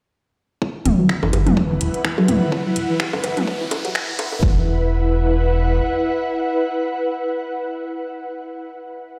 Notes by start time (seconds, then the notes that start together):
0.62 E4, kick, riser
0.85 E1 E3, closed hi-hat, mid tom
0.90 B4
0.99 F#3
1.09 finger snap, kick
1.23 G1 E3, low bongo
1.33 G1 F#5, closed hi-hat, cowbell, high bongo
1.47 E1 F#3, closed hi-hat, mid tom
1.57 kick
1.70 F#1 E3
1.81 E1, closed hi-hat
1.94 closed hi-hat
2.05 E3, finger snap, kick
2.18 F#3, cowbell, low bongo
2.28 D1, closed hi-hat, mid tom
2.42 E3
2.52 kick
2.66 F#3
2.76 E1, closed hi-hat
2.90 E3
3.00 finger snap, kick, cowbell
3.13 G1, low bongo
3.24 G1 E3, closed hi-hat, high bongo
3.37 E1 F#3, closed hi-hat, mid tom
3.47 kick
3.61 E3
3.71 E1, kick, closed hi-hat, low bongo
3.85 E1 F#3, closed hi-hat, cowbell
3.95 finger snap, kick
4.09 E3
4.19 closed hi-hat, high bongo, low bongo
4.32 E1, low bongo
4.43 E1 E3 E4, kick
4.51 B4
4.58 F#5